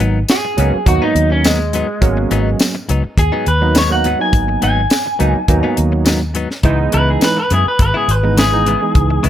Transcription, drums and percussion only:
0.00 closed hi-hat medium
0.28 snare loud
0.28 closed hi-hat medium
0.28 tambourine loud
0.58 closed hi-hat medium
0.86 kick medium
0.86 closed hi-hat medium
1.16 closed hi-hat medium
1.44 snare loud
1.44 closed hi-hat medium
1.44 tambourine loud
1.73 closed hi-hat medium
2.02 kick loud
2.02 closed hi-hat medium
2.31 closed hi-hat medium
2.59 snare loud
2.59 closed hi-hat medium
2.59 tambourine loud
2.89 closed hi-hat medium
3.18 kick medium
3.18 closed hi-hat medium
3.46 closed hi-hat medium
3.75 snare loud
3.75 closed hi-hat medium
3.75 tambourine loud
4.04 closed hi-hat medium
4.33 kick loud
4.33 closed hi-hat medium
4.62 closed hi-hat medium
4.90 snare loud
4.90 closed hi-hat medium
4.90 tambourine loud
5.20 closed hi-hat medium
5.48 kick medium
5.48 closed hi-hat medium
5.77 closed hi-hat medium
6.06 snare loud
6.06 closed hi-hat medium
6.06 tambourine loud
6.35 closed hi-hat medium
6.51 snare soft
6.63 kick loud
6.63 closed hi-hat medium
6.92 closed hi-hat medium
7.21 snare loud
7.21 closed hi-hat medium
7.21 tambourine loud
7.50 closed hi-hat medium
7.79 kick medium
7.79 closed hi-hat medium
8.09 closed hi-hat medium
8.37 snare loud
8.37 closed hi-hat medium
8.37 tambourine loud
8.66 closed hi-hat medium
8.95 kick loud
8.95 closed hi-hat medium
9.24 closed hi-hat medium

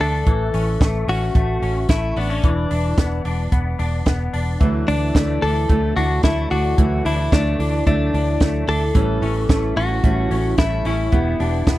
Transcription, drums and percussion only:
0.00 open hi-hat medium
0.26 kick medium
0.26 closed hi-hat medium
0.54 open hi-hat medium
0.81 kick loud
0.81 snare loud
0.81 closed hi-hat medium
1.08 open hi-hat medium
1.35 kick loud
1.35 closed hi-hat medium
1.63 open hi-hat medium
1.89 kick loud
1.89 snare medium
1.89 closed hi-hat medium
2.16 open hi-hat medium
2.44 kick medium
2.44 closed hi-hat medium
2.71 open hi-hat medium
2.98 kick loud
2.98 snare loud
2.98 closed hi-hat medium
3.25 open hi-hat medium
3.52 kick medium
3.52 closed hi-hat medium
3.79 open hi-hat medium
4.06 kick medium
4.06 snare loud
4.06 closed hi-hat medium
4.34 open hi-hat medium
4.61 kick loud
4.61 closed hi-hat medium
4.88 open hi-hat medium
5.15 kick loud
5.15 snare loud
5.15 closed hi-hat medium
5.42 open hi-hat medium
5.69 kick medium
5.69 closed hi-hat medium
5.97 open hi-hat soft
6.23 kick medium
6.23 snare loud
6.23 closed hi-hat medium
6.51 open hi-hat medium
6.78 kick loud
6.78 closed hi-hat medium
7.06 open hi-hat medium
7.32 kick loud
7.32 snare loud
7.32 closed hi-hat medium
7.60 open hi-hat medium
7.87 kick medium
7.87 closed hi-hat medium
8.14 open hi-hat medium
8.40 kick medium
8.40 snare medium
8.40 closed hi-hat medium
8.68 open hi-hat medium
8.95 kick loud
8.95 closed hi-hat medium
9.22 open hi-hat medium
9.49 kick loud
9.49 snare loud
9.49 closed hi-hat medium
9.77 open hi-hat medium
10.04 kick loud
10.04 closed hi-hat medium
10.31 open hi-hat medium
10.58 kick loud
10.58 snare loud
10.58 closed hi-hat medium
10.85 open hi-hat medium
11.12 kick loud
11.12 closed hi-hat medium
11.40 open hi-hat medium
11.67 kick loud
11.67 snare loud
11.67 closed hi-hat medium

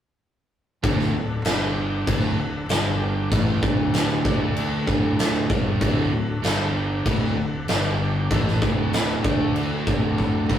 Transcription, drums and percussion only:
0.84 kick loud
0.84 crash medium
1.00 snare soft
1.45 snare loud
1.45 crash medium
2.07 kick loud
2.07 crash medium
2.69 snare loud
2.69 crash medium
3.32 kick loud
3.32 crash medium
3.63 kick loud
3.94 snare loud
3.94 crash medium
4.25 kick loud
4.56 crash medium
4.87 kick loud
5.19 snare loud
5.19 crash medium
5.50 kick loud
5.81 kick loud
5.81 crash medium
6.44 snare loud
6.44 crash medium
7.06 kick loud
7.06 crash medium
7.68 snare loud
7.68 crash medium
8.31 kick loud
8.31 crash medium
8.48 snare soft
8.62 kick loud
8.93 snare loud
8.93 crash medium
9.24 kick loud
9.56 crash medium
9.87 kick loud
10.18 kick medium
10.50 kick medium

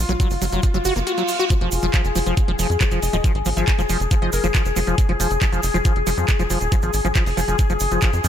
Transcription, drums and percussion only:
0.09 closed hi-hat soft
0.09 shaker soft
0.20 kick loud
0.20 closed hi-hat loud
0.20 shaker soft
0.30 open hi-hat medium
0.30 shaker soft
0.42 open hi-hat loud
0.42 shaker medium
0.52 closed hi-hat soft
0.52 shaker soft
0.63 kick loud
0.63 closed hi-hat medium
0.63 shaker soft
0.74 closed hi-hat soft
0.74 shaker soft
0.85 open hi-hat loud
0.85 shaker medium
0.96 closed hi-hat soft
0.96 shaker soft
1.07 closed hi-hat loud
1.07 shaker soft
1.18 closed hi-hat soft
1.18 shaker soft
1.28 open hi-hat loud
1.28 shaker medium
1.39 closed hi-hat soft
1.39 shaker soft
1.50 kick loud
1.50 closed hi-hat loud
1.50 shaker medium
1.61 closed hi-hat soft
1.72 open hi-hat loud
1.72 shaker medium
1.82 closed hi-hat soft
1.82 shaker soft
1.94 kick loud
1.94 clap loud
1.94 closed hi-hat medium
1.94 shaker soft
2.05 closed hi-hat soft
2.05 shaker soft
2.15 open hi-hat loud
2.15 shaker medium
2.26 closed hi-hat soft
2.26 shaker soft
2.37 kick loud
2.37 closed hi-hat medium
2.37 shaker soft
2.48 closed hi-hat soft
2.59 open hi-hat loud
2.59 shaker medium
2.70 closed hi-hat soft
2.70 shaker soft
2.81 kick loud
2.81 clap loud
2.81 closed hi-hat loud
2.81 shaker medium
2.91 closed hi-hat soft
2.91 shaker soft
3.02 open hi-hat loud
3.02 shaker loud
3.13 closed hi-hat soft
3.13 shaker soft
3.24 kick loud
3.24 closed hi-hat medium
3.24 shaker medium
3.35 closed hi-hat soft
3.45 open hi-hat loud
3.45 shaker loud
3.57 closed hi-hat soft
3.57 shaker soft
3.68 kick loud
3.68 clap loud
3.68 closed hi-hat medium
3.68 shaker medium
3.79 closed hi-hat soft
3.79 shaker soft
3.89 open hi-hat loud
3.89 shaker loud
4.00 closed hi-hat soft
4.00 shaker soft
4.11 kick loud
4.11 closed hi-hat medium
4.11 shaker medium
4.22 closed hi-hat soft
4.33 open hi-hat loud
4.33 shaker medium
4.44 closed hi-hat soft
4.44 shaker soft
4.55 kick loud
4.55 clap loud
4.55 closed hi-hat medium
4.55 shaker medium
4.66 closed hi-hat soft
4.66 shaker soft
4.76 open hi-hat loud
4.76 shaker medium
4.87 closed hi-hat soft
4.87 shaker soft
4.98 kick loud
4.98 closed hi-hat medium
4.98 shaker medium
5.09 closed hi-hat soft
5.20 open hi-hat loud
5.20 shaker loud
5.31 closed hi-hat soft
5.31 shaker soft
5.42 kick loud
5.42 clap loud
5.42 closed hi-hat medium
5.42 shaker medium
5.52 closed hi-hat soft
5.52 shaker soft
5.63 open hi-hat loud
5.63 shaker medium
5.74 closed hi-hat soft
5.74 shaker soft
5.85 kick loud
5.85 closed hi-hat medium
5.85 shaker medium
5.96 closed hi-hat soft
6.07 open hi-hat loud
6.07 shaker loud
6.18 closed hi-hat soft
6.18 shaker soft
6.28 kick loud
6.28 clap loud
6.28 closed hi-hat medium
6.28 shaker medium
6.39 closed hi-hat soft
6.39 shaker soft
6.50 open hi-hat loud
6.50 shaker medium
6.61 closed hi-hat soft
6.61 shaker soft
6.72 kick loud
6.72 closed hi-hat medium
6.72 shaker medium
6.82 closed hi-hat soft
6.82 shaker soft
6.93 open hi-hat loud
6.93 shaker medium
7.05 closed hi-hat soft
7.05 shaker soft
7.15 kick loud
7.15 clap loud
7.15 closed hi-hat medium
7.15 shaker medium
7.26 open hi-hat medium
7.26 shaker soft
7.37 open hi-hat loud
7.37 shaker medium
7.48 closed hi-hat soft
7.48 shaker soft
7.59 kick loud
7.59 closed hi-hat medium
7.59 shaker medium
7.70 closed hi-hat soft
7.70 shaker soft
7.80 open hi-hat loud
7.80 shaker loud
7.91 closed hi-hat soft
7.91 shaker soft
8.02 kick loud
8.02 clap loud
8.02 closed hi-hat medium
8.02 shaker medium
8.13 closed hi-hat soft
8.13 shaker soft
8.24 open hi-hat loud
8.24 shaker medium

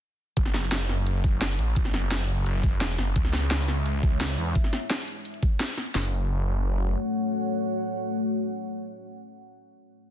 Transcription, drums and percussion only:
0.37 kick loud
0.37 closed hi-hat loud
0.46 snare soft
0.54 snare soft
0.54 snare medium
0.54 closed hi-hat medium
0.72 snare loud
0.72 closed hi-hat loud
0.89 snare soft
0.89 closed hi-hat medium
1.07 closed hi-hat loud
1.24 kick loud
1.24 closed hi-hat medium
1.41 snare loud
1.41 closed hi-hat loud
1.59 closed hi-hat medium
1.76 kick loud
1.76 closed hi-hat loud
1.85 snare soft
1.94 snare medium
1.94 closed hi-hat medium
2.11 snare loud
2.11 closed hi-hat loud
2.29 closed hi-hat medium
2.46 closed hi-hat medium
2.64 kick loud
2.64 closed hi-hat medium
2.81 snare loud
2.81 closed hi-hat medium
2.98 snare soft
2.98 closed hi-hat medium
3.16 kick loud
3.16 closed hi-hat medium
3.25 snare soft
3.33 snare soft
3.33 snare medium
3.33 closed hi-hat medium
3.51 snare loud
3.51 closed hi-hat medium
3.68 snare soft
3.68 closed hi-hat medium
3.86 closed hi-hat medium
4.03 kick loud
4.03 closed hi-hat medium
4.21 snare loud
4.21 closed hi-hat medium
4.38 closed hi-hat medium
4.55 kick loud
4.55 closed hi-hat medium
4.64 snare soft
4.73 snare medium
4.73 closed hi-hat medium
4.90 snare loud
4.90 closed hi-hat medium
5.08 closed hi-hat medium
5.25 closed hi-hat medium
5.34 closed hi-hat soft
5.43 kick loud
5.43 closed hi-hat medium
5.60 snare loud
5.60 closed hi-hat medium
5.78 snare soft
5.78 closed hi-hat medium
5.86 closed hi-hat soft
5.95 snare loud
5.95 open hi-hat loud

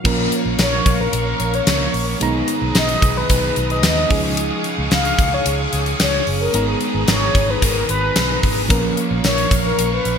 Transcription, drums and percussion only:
0.05 kick loud
0.05 crash medium
0.32 closed hi-hat medium
0.59 snare loud
0.59 closed hi-hat medium
0.59 tambourine medium
0.86 kick loud
0.86 closed hi-hat medium
1.13 closed hi-hat loud
1.40 closed hi-hat medium
1.54 closed hi-hat soft
1.67 snare loud
1.67 closed hi-hat loud
1.67 tambourine medium
1.94 open hi-hat medium
2.21 closed hi-hat loud
2.48 closed hi-hat medium
2.75 snare loud
2.75 closed hi-hat medium
2.75 tambourine medium
2.89 closed hi-hat medium
3.02 kick loud
3.02 closed hi-hat medium
3.30 kick medium
3.30 closed hi-hat loud
3.56 closed hi-hat medium
3.70 closed hi-hat soft
3.83 snare loud
3.83 closed hi-hat medium
3.83 tambourine medium
4.10 kick loud
4.10 open hi-hat medium
4.37 closed hi-hat loud
4.64 closed hi-hat medium
4.91 snare loud
4.91 closed hi-hat medium
4.91 tambourine medium
5.05 closed hi-hat medium
5.19 kick loud
5.19 closed hi-hat medium
5.46 closed hi-hat loud
5.73 closed hi-hat medium
5.86 closed hi-hat soft
6.00 snare loud
6.00 closed hi-hat medium
6.00 tambourine medium
6.27 open hi-hat medium
6.54 closed hi-hat loud
6.81 closed hi-hat medium
7.08 snare loud
7.08 closed hi-hat medium
7.08 tambourine medium
7.35 kick loud
7.35 closed hi-hat medium
7.62 kick medium
7.62 closed hi-hat loud
7.89 closed hi-hat medium
8.16 snare loud
8.16 closed hi-hat loud
8.16 tambourine medium
8.43 kick medium
8.43 open hi-hat medium
8.70 kick loud
8.70 closed hi-hat loud
8.97 closed hi-hat medium
9.24 snare loud
9.24 closed hi-hat medium
9.24 tambourine medium
9.38 closed hi-hat medium
9.51 kick loud
9.51 closed hi-hat medium
9.79 closed hi-hat loud
10.05 closed hi-hat medium

